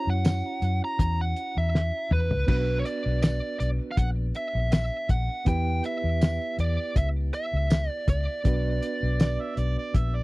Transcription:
Already playing: reed electric piano C#4 E4 F#4 C#5
0.07 fingered electric bass F#2, lead electric guitar F#5
0.25 snare, closed hi-hat, tambourine
0.62 fingered electric bass F#2, closed hi-hat
0.85 lead electric guitar A#5
0.99 fingered electric bass E2, kick, closed hi-hat
1.21 lead electric guitar F#5
1.36 closed hi-hat
1.57 fingered electric bass E2, lead electric guitar E5
1.75 snare
2.11 fingered electric bass E2, lead electric guitar B4, mid tom
2.31 fingered electric bass C#2, floor tom
2.47 fingered electric bass B1, reed electric piano B3 D4 F#4 B4, lead electric guitar B4, kick, crash
2.79 lead electric guitar C#5
2.85 lead electric guitar D5, closed hi-hat
3.06 fingered electric bass B1
3.22 lead electric guitar D5, snare, closed hi-hat, tambourine
3.60 fingered electric bass B1, lead electric guitar D5, closed hi-hat
3.91 lead electric guitar F5
3.97 fingered electric bass A#1, lead electric guitar F#5, kick, closed hi-hat
4.35 lead electric guitar E5, closed hi-hat
4.55 fingered electric bass A#1
4.72 lead electric guitar E5, snare, closed hi-hat, tambourine
5.09 fingered electric bass A#1, lead electric guitar F#5, kick, closed hi-hat
5.45 fingered electric bass E2, reed electric piano B3 E4 G4 B4, lead electric guitar G5, kick, closed hi-hat
5.84 lead electric guitar E5, closed hi-hat
6.04 fingered electric bass E2
6.21 snare, closed hi-hat, tambourine
6.59 fingered electric bass E2, lead electric guitar D5, closed hi-hat
6.96 fingered electric bass C#2, lead electric guitar E5, kick, closed hi-hat
7.33 lead electric guitar E5, closed hi-hat
7.53 fingered electric bass C#2
7.70 snare, closed hi-hat, tambourine
7.90 lead electric guitar D5
8.08 fingered electric bass C#2, lead electric guitar D5, kick, closed hi-hat
8.44 fingered electric bass B1, reed electric piano B3 D4 F#4 B4, kick, closed hi-hat
8.82 closed hi-hat
9.03 fingered electric bass B1
9.20 harmonica D5, snare, closed hi-hat, tambourine
9.41 harmonica E5
9.57 fingered electric bass B1, harmonica D5, closed hi-hat
9.78 harmonica D5
9.94 fingered electric bass A#1, harmonica E5, kick, closed hi-hat
10.16 harmonica D5

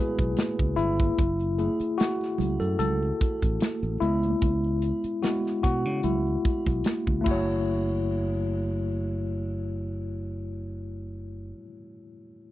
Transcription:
Already playing: tine electric piano G#3 B3 E4 F#4 G#4 B4
0.19 fingered electric bass B1, kick, closed hi-hat, muted triangle
0.37 snare, closed hi-hat, high conga, muted triangle
0.59 fingered electric bass C#2, kick, closed hi-hat, muted triangle
0.76 fingered electric bass G1, tine electric piano E4, closed hi-hat, triangle
1.00 kick, closed hi-hat, high conga, muted triangle
1.19 fingered electric bass F#1, kick, closed hi-hat, muted conga, muted triangle
1.40 closed hi-hat, muted triangle
1.58 tine electric piano A3 E4 G#4, closed hi-hat, triangle
1.80 muted fingered electric bass stroke, closed hi-hat, muted triangle
1.98 tine electric piano F#4, snare, closed hi-hat, high conga, muted triangle
2.21 snare, muted triangle
2.38 fingered electric bass C#2, closed hi-hat, low conga, triangle
2.60 fingered electric bass F#2, tine electric piano A4, closed hi-hat, muted triangle
2.79 fingered electric bass C#2, tine electric piano A4, closed hi-hat, muted conga, low conga, muted triangle
3.03 muted triangle
3.21 kick, closed hi-hat, muted conga, triangle
3.42 fingered electric bass A1, kick, closed hi-hat, muted triangle
3.60 snare, closed hi-hat, high conga, muted triangle
3.83 fingered electric bass A1, closed hi-hat, muted triangle
4.00 fingered electric bass C#2, tine electric piano G#3 B3 E4, closed hi-hat, triangle
4.23 closed hi-hat, high conga, muted triangle
4.42 fingered electric bass C#2, kick, closed hi-hat, muted conga, muted triangle
4.64 muted triangle
4.82 closed hi-hat, triangle
5.04 muted fingered electric bass stroke, closed hi-hat, muted triangle
5.23 tine electric piano G#3 B3 E4 F#4, snare, closed hi-hat, high conga, muted triangle
5.45 snare, muted triangle
5.63 fingered electric bass B2, tine electric piano F#4, kick, closed hi-hat, triangle
5.85 fingered electric bass C#3, closed hi-hat, muted triangle
6.03 fingered electric bass C#2, tine electric piano E4, closed hi-hat, muted conga, low conga, muted triangle
6.27 muted triangle
6.45 kick, closed hi-hat, muted conga, triangle
6.66 fingered electric bass B1, kick, closed hi-hat, muted triangle
6.84 snare, closed hi-hat, high conga, muted triangle
7.07 fingered electric bass C#2, kick, muted triangle
7.21 tine electric piano A3 E4
7.26 fingered electric bass F#1, tine electric piano F#4, kick, crash, muted conga, muted triangle
7.31 tine electric piano C#5

